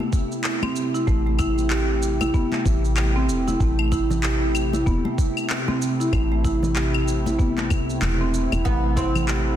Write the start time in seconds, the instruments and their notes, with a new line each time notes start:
Already playing: analog synth pad C3 A3 E4 G4
0.00 marimba A3, muted conga, high conga
0.13 kick, shaker
0.32 shaker
0.44 clap, shaker
0.62 marimba C4, high conga, claves
0.76 shaker
0.94 marimba E4, shaker
1.07 fm bass A1, marimba A3, kick, shaker
1.26 marimba A3, muted conga
1.39 marimba E4, kick, muted conga, claves, shaker
1.58 high conga, shaker
1.70 marimba G4, clap, shaker
2.02 shaker
2.21 marimba E4, muted conga, high conga, claves, shaker
2.34 marimba B3, kick, shaker
2.52 marimba A3, clap, muted conga
2.66 fm bass A1, kick, shaker
2.85 shaker
2.97 clap, claves, shaker
3.16 marimba C4
3.29 fm bass E1, shaker
3.48 marimba E4, muted conga, high conga, shaker
3.60 fm bass A1, marimba A3, kick, shaker
3.79 marimba A3, claves
3.92 marimba E4, kick, muted conga, shaker
4.10 low conga, shaker
4.23 marimba G4, clap, shaker
4.55 claves, shaker
4.73 marimba E4, muted conga, shaker
4.86 fm bass E1, marimba B3, kick, shaker
5.05 marimba A3, muted conga, high conga
5.18 kick, shaker
5.37 claves, shaker
5.50 clap, shaker
5.68 marimba C4, high conga
5.82 shaker
6.00 marimba E4, shaker
6.13 fm bass A1, marimba A3, kick, claves, shaker
6.32 marimba A3, muted conga
6.44 marimba E4, kick, muted conga, shaker
6.63 high conga, low conga, shaker
6.76 marimba G4, clap, shaker
6.94 claves
7.08 shaker
7.26 marimba E4, muted conga, high conga, shaker
7.39 marimba B3, kick, shaker
7.58 marimba A3, clap, muted conga
7.70 fm bass C2, kick, high conga, claves, shaker
7.90 shaker
8.02 fm bass E1, clap, shaker
8.21 marimba C4
8.34 shaker
8.52 fm bass E1, marimba E4, muted conga, high conga, claves, shaker
8.64 fm bass A1, marimba A3, oud B3, analog synth pad F#5, kick, shaker
8.84 marimba A3
8.96 oud C4, marimba E4, kick, muted conga, shaker
9.15 low conga, claves, shaker
9.28 marimba G4, clap, shaker